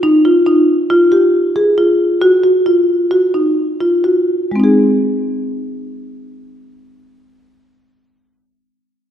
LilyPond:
\new Staff \with { instrumentName = "Marimba" } { \time 5/4 \key aes \major \tempo 4 = 130 ees'8 f'8 ees'4 f'8 g'4 aes'8 f'4 | ges'8 ges'8 f'4 ges'8 ees'4 f'8 ges'4 | <aes c' ees' aes'>1~ <aes c' ees' aes'>4~ | <aes c' ees' aes'>1~ <aes c' ees' aes'>4 | }